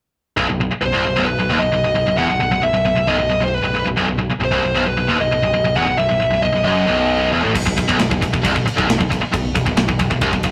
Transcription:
0.37 B0 B1
0.49 B0 B1
0.60 B0 B1
0.71 muted distorted electric guitar stroke, muted picked electric bass stroke
0.81 B0 B1 C5
0.93 C1 C2
1.04 B0 B1
1.16 B0 B1
1.25 B0 B1 B4
1.38 B0 B1
1.49 D#1 D#2
1.59 B0 B1 D#5
1.72 B0 B1
1.84 B0 B1
1.95 B0 B1
2.06 B0 B1
2.17 E1 E2 F#5
2.29 B0 B1
2.40 B0 B1
2.51 B0 B1 F#5
2.62 B0 B1 E5
2.73 B0 B1
2.85 B0 B1
2.95 B0 B1
3.06 B0 B1 D#5
3.18 B0 B1
3.29 B0 B1
3.40 B0 B1
3.44 C5
3.54 B4
3.62 B0 B1
3.73 B0 B1
3.84 B0 B1
3.96 B0 B1
4.07 B0 B1
4.18 B0 B1
4.29 muted picked electric bass stroke, muted distorted electric guitar stroke
4.39 B0 B1
4.45 C5
4.50 C1 C2
4.63 B0 B1
4.74 B0 B1
4.85 B0 B1 B4
4.96 B0 B1
5.08 D#1 D#2
5.19 B0 B1 D#5
5.30 B0 B1
5.42 B0 B1
5.54 B0 B1
5.65 B0 B1
5.76 E1 E2 F#5
5.87 B0 B1
5.97 B0 B1 E5
6.09 B0 B1
6.20 B0 B1
6.31 B0 B1
6.42 B0 B1 D#5
6.52 B0 B1
6.64 F#1 F#2 D#5
6.87 B0 B1
7.32 E1 E2
7.44 A1 A2
7.54 B0 B1, kick, crash
7.66 B0 B1, kick
7.77 B0 B1, kick, ride
7.88 B0 B1, kick
7.99 B0 B1, snare, ride
8.11 B0 B1, kick
8.21 B0 B1, kick, ride
8.33 B0 B1, kick
8.44 C1 C2, kick, ride
8.55 B0 B1, kick
8.66 muted distorted electric guitar stroke, muted picked electric bass stroke, ride
8.77 B0 B1, kick
8.88 B0 B1, snare, ride
9.00 B0 B1, kick
9.11 B0 B1, kick, ride
9.21 muted distorted electric guitar stroke, muted picked electric bass stroke
9.33 B0 B1, kick, ride
9.55 B0 B1, kick, ride
9.66 B0 B1, kick
9.77 B0 B1, snare, ride
9.89 B0 B1, kick
9.99 B0 B1, kick, ride
10.10 B0 B1, kick
10.21 C1 C2, kick, ride
10.32 B0 B1, kick
10.43 B0 B1, kick, ride

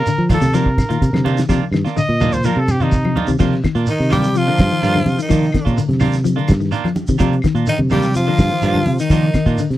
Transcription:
Already playing: A#4
0.06 D3, muted fingered electric bass stroke, snare, closed hi-hat, shekere
0.18 F3
0.29 D#3 A#3 D4 F4 A4, kick, snare, open hi-hat, high conga, low conga, claves, shekere
0.42 C3, snare, low conga, shekere
0.53 D#3 F3 A#3 D4 F4 A#4, snare, closed hi-hat, high conga, shekere
0.66 muted clean electric guitar stroke, kick
0.78 kick, snare, closed hi-hat, high conga, claves, shekere
0.89 A#2 D#3 A#3 F4, muted clean electric guitar stroke, closed hi-hat, shekere
1.02 C3, kick, closed hi-hat, shekere
1.13 C3 D3, snare, high conga, claves
1.24 D#3 A#3 D4 F4, closed hi-hat, high conga, shekere
1.38 D#3, snare, closed hi-hat, shekere
1.49 C3 D#3 F3 A#3 D4 F4, kick, snare, low conga, claves, shekere
1.71 G2 D#3, snare, claves, shekere
1.85 A#3 D4 F4, snare, shekere
1.96 D3 D#5, muted fingered electric bass stroke, high tom, shekere
2.09 A#2
2.20 D#3 A#3 D4 F4, high tom, high conga, low conga, claves, shekere
2.32 C5, mid tom, low conga, shekere
2.44 D#3 F3 A#3 D4 F4 A#4, mid tom, high conga, shekere
2.56 C3 A4
2.68 G4, mid tom, high conga, claves, shekere
2.80 D#3 A#3 D4 D#4 F4, mid tom, shekere
2.92 kick, mid tom, shekere
3.05 F3, high conga, claves
3.16 D#3 A#3 D4 F4, floor tom, high conga, shekere
3.27 C3 D#3, floor tom, shekere
3.39 C3 D#3 F3 A#3 D4 F4, kick, crash, low conga, claves, shekere
3.53 snare, closed hi-hat
3.63 D#3, kick, snare, closed hi-hat, claves, shekere
3.75 A#2 A#3 D4 F4, snare, closed hi-hat, shekere
3.86 D#3 D#4, muted clean electric guitar stroke, closed hi-hat, shekere
4.00 C3, snare
4.10 D#3 G3 A#3 D4 F4 G4, open hi-hat, high conga, low conga, claves, shekere
4.23 snare, shekere
4.35 F3 F4, closed hi-hat, shekere
4.46 D3 A#3 D4 F4
4.58 G2, kick, snare, closed hi-hat, high conga, claves, shekere
4.70 D#3, snare, shekere
4.82 G2 D#3 A#3 D4 F4, snare, closed hi-hat, shekere
4.94 D3, snare, high conga, claves
5.06 C3, open hi-hat, high conga, shekere
5.19 D#3 D#4, closed hi-hat, shekere
5.29 D#3 F3 A#3 D4 F4, kick, closed hi-hat, low conga, claves, shekere
5.43 snare, closed hi-hat
5.52 D#3, kick, snare, closed hi-hat, claves, shekere
5.65 A#2 A#3 D4 F4, kick, closed hi-hat, shekere
5.78 D3, closed hi-hat, shekere
5.89 C3, snare, closed hi-hat, high conga
6.00 D#3 A#3 D4 F4, open hi-hat, high conga, low conga, claves, shekere
6.04 snare
6.13 snare, closed hi-hat, shekere
6.24 F3, closed hi-hat, high conga, shekere
6.36 D3 A#3 D4 F4, closed hi-hat
6.48 G2, kick, snare, closed hi-hat, high conga, claves, shekere
6.60 D#3, snare, shekere
6.71 D#3 A#3 D4 F4, closed hi-hat, shekere
6.75 snare
6.84 F3, snare, closed hi-hat, high conga, claves
6.95 muted fingered electric bass stroke, closed hi-hat, high conga, shekere
7.07 C3 D#3, kick, closed hi-hat, shekere
7.18 C3 D#3 F3 A#3 D4 F4, kick, closed hi-hat, low conga, claves, shekere
7.33 closed hi-hat
7.42 D#3, kick, snare, closed hi-hat, claves, shekere
7.55 A#2 A#3 D4 F4, closed hi-hat, shekere
7.67 D3 D#3 D#4, closed hi-hat, shekere
7.79 C3, high conga
7.90 D#3 G3 A#3 D4 F4 G4, open hi-hat, high conga, low conga, claves, shekere
8.02 shekere
8.14 F3 F4, muted clean electric guitar stroke, closed hi-hat, high conga, shekere
8.26 D3 A#3 D4 F4
8.38 G2, kick, snare, closed hi-hat, high conga, claves, shekere
8.50 D#3, snare, shekere
8.62 G2 D#3 A#3 D4 F4, closed hi-hat, shekere
8.74 D3, snare, high conga, claves
8.86 C3, open hi-hat, high conga, shekere
8.98 D#3 D#4, snare, closed hi-hat, shekere
9.10 D#3 F3 A#3 D4 F4, kick, closed hi-hat, low conga, claves, shekere
9.22 snare, closed hi-hat
9.34 D#3, kick, snare, closed hi-hat, claves, shekere
9.46 A#2 A#3 D4 F4, kick, closed hi-hat, shekere
9.58 D3, closed hi-hat, shekere
9.70 C3, snare, closed hi-hat

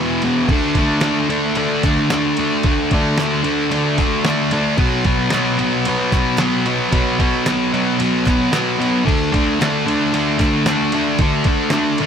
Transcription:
Already playing: E2 B2 E3
0.22 E2 B2 E3, ride
0.49 D3 A3, kick, crash
0.53 D4
0.75 D3 A3, kick, ride
0.80 D4
1.01 D3 A3 D4, snare, clap, ride
1.30 D3 A3 D4, ride
1.55 D3 A3 D4, ride
1.83 D3 A3 D4, kick, clap, ride
2.10 D3 A3 D4, snare, clap, ride
2.37 D3 A3 D4, ride
2.63 D3 A3 D4, kick, ride
2.91 D3 A3 D4, kick, ride
3.18 D3 A3 D4, snare, clap, ride
3.44 D3 A3 D4, ride
3.71 D3 A3 D4, ride
3.98 D3 A3 D4, kick, clap, ride
4.25 D3 A3 D4, snare, clap, ride
4.51 D3 A3 D4, ride
4.78 B2 F#3 B3, kick, crash
5.05 B2 F#3 B3, kick, ride
5.30 B2 F#3 B3, snare, clap, ride
5.59 B2 F#3 B3, ride
5.85 B2 F#3 B3, ride
6.12 B2 F#3 B3, kick, clap, ride
6.38 B2 F#3 B3, snare, clap, ride
6.66 B2 F#3 B3, ride
6.92 B2 F#3 B3, kick, ride
7.19 B2 F#3 B3, kick, ride
7.46 B2 F#3 B3, snare, clap, ride
7.74 B2 F#3 B3, ride
7.99 B2 F#3 B3, ride
8.26 B2 F#3 B3, kick, clap, ride
8.52 B2 F#3 B3, snare, clap, ride
8.79 B2 F#3 B3, ride
9.05 D3 A3 D4, kick, crash
9.33 D3 A3 D4, kick, ride
9.60 D3 A3 D4, snare, clap, ride
9.85 D3 A3 D4, ride
10.13 D3 A3 D4, ride
10.39 D3 A3 D4, kick, clap, ride
10.66 D3 A3 D4, snare, clap, ride
10.92 D3 A3 D4, ride
11.19 D3 A3 D4, kick, ride
11.44 D3 A3 D4, kick, ride
11.70 D3 A3 D4, snare, clap, ride
11.98 D3 D4, ride
12.02 A3

